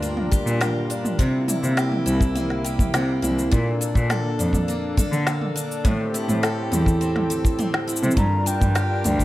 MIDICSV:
0, 0, Header, 1, 6, 480
1, 0, Start_track
1, 0, Tempo, 582524
1, 981, Time_signature, 4, 2, 24, 8
1, 7618, End_track
2, 0, Start_track
2, 0, Title_t, "Flute"
2, 0, Program_c, 0, 73
2, 6736, Note_on_c, 0, 82, 108
2, 6979, Note_on_c, 0, 79, 101
2, 6992, Note_off_c, 0, 82, 0
2, 7618, Note_off_c, 0, 79, 0
2, 7618, End_track
3, 0, Start_track
3, 0, Title_t, "Analog synth pad"
3, 0, Program_c, 1, 89
3, 0, Note_on_c, 1, 55, 74
3, 0, Note_on_c, 1, 62, 72
3, 0, Note_on_c, 1, 65, 64
3, 0, Note_on_c, 1, 70, 86
3, 961, Note_off_c, 1, 62, 0
3, 961, Note_off_c, 1, 70, 0
3, 962, Note_off_c, 1, 65, 0
3, 981, Note_on_c, 1, 48, 74
3, 983, Note_on_c, 1, 58, 64
3, 984, Note_on_c, 1, 64, 84
3, 2866, Note_off_c, 1, 55, 0
3, 2882, Note_off_c, 1, 48, 0
3, 2883, Note_off_c, 1, 58, 0
3, 2883, Note_off_c, 1, 64, 0
3, 2902, Note_on_c, 1, 62, 87
3, 2902, Note_on_c, 1, 69, 77
3, 2903, Note_on_c, 1, 58, 65
3, 4802, Note_off_c, 1, 62, 0
3, 4803, Note_off_c, 1, 58, 0
3, 4822, Note_on_c, 1, 60, 67
3, 4822, Note_on_c, 1, 67, 78
3, 6709, Note_off_c, 1, 69, 0
3, 6722, Note_off_c, 1, 60, 0
3, 6722, Note_off_c, 1, 67, 0
3, 6737, Note_on_c, 1, 62, 65
3, 6737, Note_on_c, 1, 70, 89
3, 6738, Note_on_c, 1, 65, 64
3, 6739, Note_on_c, 1, 55, 74
3, 7618, Note_off_c, 1, 55, 0
3, 7618, Note_off_c, 1, 62, 0
3, 7618, Note_off_c, 1, 65, 0
3, 7618, Note_off_c, 1, 70, 0
3, 7618, End_track
4, 0, Start_track
4, 0, Title_t, "Steel-string acoustic guitar"
4, 0, Program_c, 2, 25
4, 0, Note_on_c, 2, 43, 79
4, 0, Note_on_c, 2, 55, 68
4, 0, Note_on_c, 2, 62, 56
4, 0, Note_on_c, 2, 67, 60
4, 20, Note_on_c, 2, 58, 58
4, 256, Note_off_c, 2, 67, 0
4, 259, Note_on_c, 2, 67, 69
4, 496, Note_off_c, 2, 58, 0
4, 499, Note_on_c, 2, 58, 60
4, 730, Note_off_c, 2, 62, 0
4, 740, Note_on_c, 2, 62, 61
4, 979, Note_off_c, 2, 55, 0
4, 980, Note_off_c, 2, 43, 0
4, 980, Note_on_c, 2, 48, 83
4, 1029, Note_off_c, 2, 62, 0
4, 1220, Note_on_c, 2, 64, 56
4, 1245, Note_off_c, 2, 58, 0
4, 1455, Note_off_c, 2, 67, 0
4, 1458, Note_on_c, 2, 67, 64
4, 1686, Note_off_c, 2, 64, 0
4, 1696, Note_on_c, 2, 64, 59
4, 1940, Note_on_c, 2, 58, 62
4, 2169, Note_off_c, 2, 67, 0
4, 2179, Note_on_c, 2, 67, 64
4, 2416, Note_off_c, 2, 58, 0
4, 2420, Note_on_c, 2, 58, 66
4, 2646, Note_off_c, 2, 64, 0
4, 2656, Note_on_c, 2, 64, 62
4, 2896, Note_on_c, 2, 46, 84
4, 2901, Note_off_c, 2, 48, 0
4, 2946, Note_off_c, 2, 64, 0
4, 2948, Note_off_c, 2, 67, 0
4, 3138, Note_on_c, 2, 62, 56
4, 3377, Note_on_c, 2, 69, 65
4, 3401, Note_off_c, 2, 58, 0
4, 3608, Note_off_c, 2, 62, 0
4, 3618, Note_on_c, 2, 62, 61
4, 3858, Note_on_c, 2, 58, 63
4, 4095, Note_off_c, 2, 69, 0
4, 4098, Note_on_c, 2, 69, 69
4, 4331, Note_off_c, 2, 58, 0
4, 4341, Note_on_c, 2, 58, 60
4, 4568, Note_off_c, 2, 62, 0
4, 4578, Note_on_c, 2, 62, 65
4, 4815, Note_off_c, 2, 46, 0
4, 4818, Note_on_c, 2, 45, 82
4, 4867, Note_off_c, 2, 62, 0
4, 4869, Note_off_c, 2, 58, 0
4, 5060, Note_on_c, 2, 64, 57
4, 5294, Note_off_c, 2, 69, 0
4, 5297, Note_on_c, 2, 69, 65
4, 5525, Note_off_c, 2, 64, 0
4, 5535, Note_on_c, 2, 64, 57
4, 5776, Note_on_c, 2, 60, 61
4, 6005, Note_off_c, 2, 69, 0
4, 6015, Note_on_c, 2, 69, 69
4, 6241, Note_off_c, 2, 60, 0
4, 6251, Note_on_c, 2, 60, 62
4, 6479, Note_off_c, 2, 64, 0
4, 6489, Note_on_c, 2, 64, 62
4, 6727, Note_off_c, 2, 45, 0
4, 6730, Note_on_c, 2, 43, 84
4, 6783, Note_off_c, 2, 64, 0
4, 6784, Note_off_c, 2, 60, 0
4, 6786, Note_off_c, 2, 69, 0
4, 6972, Note_on_c, 2, 62, 57
4, 7211, Note_on_c, 2, 67, 68
4, 7441, Note_off_c, 2, 62, 0
4, 7450, Note_on_c, 2, 62, 61
4, 7618, Note_off_c, 2, 43, 0
4, 7618, Note_off_c, 2, 62, 0
4, 7618, Note_off_c, 2, 67, 0
4, 7618, End_track
5, 0, Start_track
5, 0, Title_t, "Cello"
5, 0, Program_c, 3, 42
5, 381, Note_on_c, 3, 46, 95
5, 457, Note_off_c, 3, 46, 0
5, 978, Note_on_c, 3, 48, 83
5, 1056, Note_off_c, 3, 48, 0
5, 1343, Note_on_c, 3, 48, 88
5, 1418, Note_off_c, 3, 48, 0
5, 1704, Note_on_c, 3, 36, 86
5, 1779, Note_off_c, 3, 36, 0
5, 2421, Note_on_c, 3, 48, 85
5, 2497, Note_off_c, 3, 48, 0
5, 2658, Note_on_c, 3, 36, 77
5, 2812, Note_off_c, 3, 36, 0
5, 2906, Note_on_c, 3, 46, 90
5, 2979, Note_off_c, 3, 46, 0
5, 3258, Note_on_c, 3, 46, 91
5, 3335, Note_off_c, 3, 46, 0
5, 3621, Note_on_c, 3, 41, 86
5, 3697, Note_off_c, 3, 41, 0
5, 4217, Note_on_c, 3, 50, 95
5, 4295, Note_off_c, 3, 50, 0
5, 4820, Note_on_c, 3, 45, 91
5, 4896, Note_off_c, 3, 45, 0
5, 5179, Note_on_c, 3, 45, 86
5, 5256, Note_off_c, 3, 45, 0
5, 5537, Note_on_c, 3, 40, 86
5, 5615, Note_off_c, 3, 40, 0
5, 6617, Note_on_c, 3, 48, 94
5, 6695, Note_off_c, 3, 48, 0
5, 6732, Note_on_c, 3, 43, 92
5, 6812, Note_off_c, 3, 43, 0
5, 7100, Note_on_c, 3, 43, 88
5, 7176, Note_off_c, 3, 43, 0
5, 7461, Note_on_c, 3, 38, 84
5, 7537, Note_off_c, 3, 38, 0
5, 7618, End_track
6, 0, Start_track
6, 0, Title_t, "Drums"
6, 28, Note_on_c, 9, 69, 30
6, 110, Note_off_c, 9, 69, 0
6, 140, Note_on_c, 9, 45, 68
6, 223, Note_off_c, 9, 45, 0
6, 265, Note_on_c, 9, 36, 100
6, 268, Note_on_c, 9, 69, 64
6, 347, Note_off_c, 9, 36, 0
6, 351, Note_off_c, 9, 69, 0
6, 389, Note_on_c, 9, 69, 42
6, 471, Note_off_c, 9, 69, 0
6, 505, Note_on_c, 9, 38, 95
6, 505, Note_on_c, 9, 45, 69
6, 512, Note_on_c, 9, 69, 30
6, 587, Note_off_c, 9, 38, 0
6, 587, Note_off_c, 9, 45, 0
6, 594, Note_off_c, 9, 69, 0
6, 747, Note_on_c, 9, 69, 68
6, 829, Note_off_c, 9, 69, 0
6, 863, Note_on_c, 9, 45, 72
6, 870, Note_on_c, 9, 69, 39
6, 946, Note_off_c, 9, 45, 0
6, 953, Note_off_c, 9, 69, 0
6, 980, Note_on_c, 9, 36, 98
6, 991, Note_on_c, 9, 69, 34
6, 1062, Note_off_c, 9, 36, 0
6, 1073, Note_off_c, 9, 69, 0
6, 1222, Note_on_c, 9, 45, 68
6, 1229, Note_on_c, 9, 69, 74
6, 1304, Note_off_c, 9, 45, 0
6, 1311, Note_off_c, 9, 69, 0
6, 1349, Note_on_c, 9, 69, 41
6, 1431, Note_off_c, 9, 69, 0
6, 1461, Note_on_c, 9, 38, 88
6, 1468, Note_on_c, 9, 69, 30
6, 1544, Note_off_c, 9, 38, 0
6, 1551, Note_off_c, 9, 69, 0
6, 1580, Note_on_c, 9, 45, 64
6, 1663, Note_off_c, 9, 45, 0
6, 1709, Note_on_c, 9, 69, 70
6, 1791, Note_off_c, 9, 69, 0
6, 1819, Note_on_c, 9, 36, 97
6, 1827, Note_on_c, 9, 69, 39
6, 1901, Note_off_c, 9, 36, 0
6, 1910, Note_off_c, 9, 69, 0
6, 1941, Note_on_c, 9, 45, 65
6, 1948, Note_on_c, 9, 69, 30
6, 2023, Note_off_c, 9, 45, 0
6, 2030, Note_off_c, 9, 69, 0
6, 2063, Note_on_c, 9, 38, 27
6, 2145, Note_off_c, 9, 38, 0
6, 2189, Note_on_c, 9, 69, 65
6, 2272, Note_off_c, 9, 69, 0
6, 2300, Note_on_c, 9, 36, 91
6, 2302, Note_on_c, 9, 45, 68
6, 2309, Note_on_c, 9, 69, 40
6, 2383, Note_off_c, 9, 36, 0
6, 2384, Note_off_c, 9, 45, 0
6, 2391, Note_off_c, 9, 69, 0
6, 2422, Note_on_c, 9, 38, 100
6, 2429, Note_on_c, 9, 69, 31
6, 2505, Note_off_c, 9, 38, 0
6, 2512, Note_off_c, 9, 69, 0
6, 2663, Note_on_c, 9, 45, 69
6, 2670, Note_on_c, 9, 69, 74
6, 2745, Note_off_c, 9, 45, 0
6, 2752, Note_off_c, 9, 69, 0
6, 2791, Note_on_c, 9, 69, 41
6, 2874, Note_off_c, 9, 69, 0
6, 2905, Note_on_c, 9, 36, 120
6, 2910, Note_on_c, 9, 69, 35
6, 2987, Note_off_c, 9, 36, 0
6, 2993, Note_off_c, 9, 69, 0
6, 3147, Note_on_c, 9, 69, 72
6, 3229, Note_off_c, 9, 69, 0
6, 3258, Note_on_c, 9, 36, 104
6, 3267, Note_on_c, 9, 69, 44
6, 3341, Note_off_c, 9, 36, 0
6, 3350, Note_off_c, 9, 69, 0
6, 3379, Note_on_c, 9, 38, 94
6, 3379, Note_on_c, 9, 45, 69
6, 3386, Note_on_c, 9, 69, 32
6, 3461, Note_off_c, 9, 38, 0
6, 3461, Note_off_c, 9, 45, 0
6, 3468, Note_off_c, 9, 69, 0
6, 3625, Note_on_c, 9, 69, 78
6, 3707, Note_off_c, 9, 69, 0
6, 3732, Note_on_c, 9, 36, 52
6, 3738, Note_on_c, 9, 45, 63
6, 3745, Note_on_c, 9, 69, 39
6, 3814, Note_off_c, 9, 36, 0
6, 3821, Note_off_c, 9, 45, 0
6, 3828, Note_off_c, 9, 69, 0
6, 3869, Note_on_c, 9, 69, 32
6, 3951, Note_off_c, 9, 69, 0
6, 4100, Note_on_c, 9, 36, 96
6, 4100, Note_on_c, 9, 45, 69
6, 4107, Note_on_c, 9, 69, 78
6, 4182, Note_off_c, 9, 36, 0
6, 4183, Note_off_c, 9, 45, 0
6, 4190, Note_off_c, 9, 69, 0
6, 4227, Note_on_c, 9, 69, 41
6, 4310, Note_off_c, 9, 69, 0
6, 4340, Note_on_c, 9, 38, 92
6, 4347, Note_on_c, 9, 69, 35
6, 4422, Note_off_c, 9, 38, 0
6, 4429, Note_off_c, 9, 69, 0
6, 4461, Note_on_c, 9, 45, 58
6, 4544, Note_off_c, 9, 45, 0
6, 4591, Note_on_c, 9, 69, 79
6, 4673, Note_off_c, 9, 69, 0
6, 4709, Note_on_c, 9, 69, 43
6, 4791, Note_off_c, 9, 69, 0
6, 4818, Note_on_c, 9, 36, 113
6, 4823, Note_on_c, 9, 45, 74
6, 4830, Note_on_c, 9, 69, 30
6, 4901, Note_off_c, 9, 36, 0
6, 4906, Note_off_c, 9, 45, 0
6, 4913, Note_off_c, 9, 69, 0
6, 5066, Note_on_c, 9, 69, 76
6, 5149, Note_off_c, 9, 69, 0
6, 5179, Note_on_c, 9, 45, 67
6, 5186, Note_on_c, 9, 69, 39
6, 5261, Note_off_c, 9, 45, 0
6, 5268, Note_off_c, 9, 69, 0
6, 5301, Note_on_c, 9, 38, 84
6, 5308, Note_on_c, 9, 69, 28
6, 5383, Note_off_c, 9, 38, 0
6, 5390, Note_off_c, 9, 69, 0
6, 5540, Note_on_c, 9, 45, 67
6, 5547, Note_on_c, 9, 69, 72
6, 5622, Note_off_c, 9, 45, 0
6, 5629, Note_off_c, 9, 69, 0
6, 5655, Note_on_c, 9, 36, 91
6, 5668, Note_on_c, 9, 69, 38
6, 5738, Note_off_c, 9, 36, 0
6, 5750, Note_off_c, 9, 69, 0
6, 5786, Note_on_c, 9, 69, 30
6, 5868, Note_off_c, 9, 69, 0
6, 5897, Note_on_c, 9, 38, 29
6, 5897, Note_on_c, 9, 45, 73
6, 5980, Note_off_c, 9, 38, 0
6, 5980, Note_off_c, 9, 45, 0
6, 6023, Note_on_c, 9, 69, 72
6, 6105, Note_off_c, 9, 69, 0
6, 6136, Note_on_c, 9, 36, 89
6, 6144, Note_on_c, 9, 69, 42
6, 6219, Note_off_c, 9, 36, 0
6, 6226, Note_off_c, 9, 69, 0
6, 6257, Note_on_c, 9, 45, 71
6, 6264, Note_on_c, 9, 69, 33
6, 6339, Note_off_c, 9, 45, 0
6, 6346, Note_off_c, 9, 69, 0
6, 6377, Note_on_c, 9, 38, 80
6, 6459, Note_off_c, 9, 38, 0
6, 6500, Note_on_c, 9, 69, 68
6, 6561, Note_off_c, 9, 69, 0
6, 6561, Note_on_c, 9, 69, 57
6, 6613, Note_on_c, 9, 45, 70
6, 6620, Note_off_c, 9, 69, 0
6, 6620, Note_on_c, 9, 69, 46
6, 6682, Note_off_c, 9, 69, 0
6, 6682, Note_on_c, 9, 69, 39
6, 6696, Note_off_c, 9, 45, 0
6, 6731, Note_on_c, 9, 36, 104
6, 6734, Note_on_c, 9, 45, 78
6, 6741, Note_off_c, 9, 69, 0
6, 6741, Note_on_c, 9, 69, 34
6, 6813, Note_off_c, 9, 36, 0
6, 6816, Note_off_c, 9, 45, 0
6, 6823, Note_off_c, 9, 69, 0
6, 6979, Note_on_c, 9, 69, 78
6, 7062, Note_off_c, 9, 69, 0
6, 7094, Note_on_c, 9, 45, 67
6, 7099, Note_on_c, 9, 36, 93
6, 7101, Note_on_c, 9, 69, 40
6, 7177, Note_off_c, 9, 45, 0
6, 7181, Note_off_c, 9, 36, 0
6, 7184, Note_off_c, 9, 69, 0
6, 7214, Note_on_c, 9, 38, 92
6, 7221, Note_on_c, 9, 69, 29
6, 7297, Note_off_c, 9, 38, 0
6, 7304, Note_off_c, 9, 69, 0
6, 7453, Note_on_c, 9, 45, 73
6, 7460, Note_on_c, 9, 69, 65
6, 7536, Note_off_c, 9, 45, 0
6, 7543, Note_off_c, 9, 69, 0
6, 7576, Note_on_c, 9, 36, 59
6, 7583, Note_on_c, 9, 69, 42
6, 7618, Note_off_c, 9, 36, 0
6, 7618, Note_off_c, 9, 69, 0
6, 7618, End_track
0, 0, End_of_file